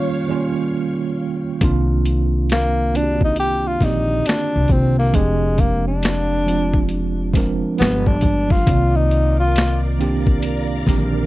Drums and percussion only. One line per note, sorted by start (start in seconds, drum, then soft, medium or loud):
1.61 kick medium
1.61 closed hi-hat medium
2.05 closed hi-hat medium
2.50 finger snap medium
2.50 snare loud
2.50 closed hi-hat medium
2.95 closed hi-hat medium
3.21 kick medium
3.36 closed hi-hat medium
3.81 kick medium
3.81 snare soft
3.81 closed hi-hat medium
4.26 snare loud
4.26 closed hi-hat medium
4.30 finger snap medium
4.68 kick medium
4.68 closed hi-hat medium
5.00 snare soft
5.14 kick medium
5.14 closed hi-hat medium
5.58 kick medium
5.58 closed hi-hat medium
6.03 finger snap medium
6.03 snare loud
6.03 closed hi-hat medium
6.48 closed hi-hat medium
6.74 kick medium
6.89 closed hi-hat medium
7.33 kick medium
7.33 snare soft
7.33 closed hi-hat medium
7.78 snare loud
7.78 closed hi-hat medium
7.83 finger snap medium
8.06 kick medium
8.21 kick medium
8.21 closed hi-hat medium
8.50 kick medium
8.50 snare soft
8.67 kick loud
8.67 closed hi-hat medium
9.11 closed hi-hat medium
9.56 finger snap medium
9.56 snare loud
9.56 closed hi-hat medium
10.01 closed hi-hat medium
10.27 kick medium
10.43 closed hi-hat medium
10.87 kick medium
10.87 snare soft
10.87 closed hi-hat medium